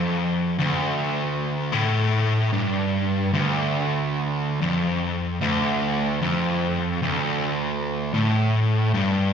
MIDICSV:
0, 0, Header, 1, 2, 480
1, 0, Start_track
1, 0, Key_signature, -1, "minor"
1, 0, Tempo, 803213
1, 65, Time_signature, 4, 2, 24, 8
1, 5576, End_track
2, 0, Start_track
2, 0, Title_t, "Distorted electric guitar"
2, 0, Program_c, 0, 30
2, 0, Note_on_c, 0, 41, 92
2, 340, Note_off_c, 0, 41, 0
2, 350, Note_on_c, 0, 38, 98
2, 1028, Note_off_c, 0, 38, 0
2, 1028, Note_on_c, 0, 45, 106
2, 1503, Note_off_c, 0, 45, 0
2, 1511, Note_on_c, 0, 43, 95
2, 1985, Note_off_c, 0, 43, 0
2, 1992, Note_on_c, 0, 38, 101
2, 2747, Note_off_c, 0, 38, 0
2, 2756, Note_on_c, 0, 41, 105
2, 3227, Note_off_c, 0, 41, 0
2, 3234, Note_on_c, 0, 38, 106
2, 3705, Note_off_c, 0, 38, 0
2, 3715, Note_on_c, 0, 41, 103
2, 4185, Note_off_c, 0, 41, 0
2, 4195, Note_on_c, 0, 38, 97
2, 4862, Note_off_c, 0, 38, 0
2, 4864, Note_on_c, 0, 45, 95
2, 5338, Note_off_c, 0, 45, 0
2, 5343, Note_on_c, 0, 43, 96
2, 5576, Note_off_c, 0, 43, 0
2, 5576, End_track
0, 0, End_of_file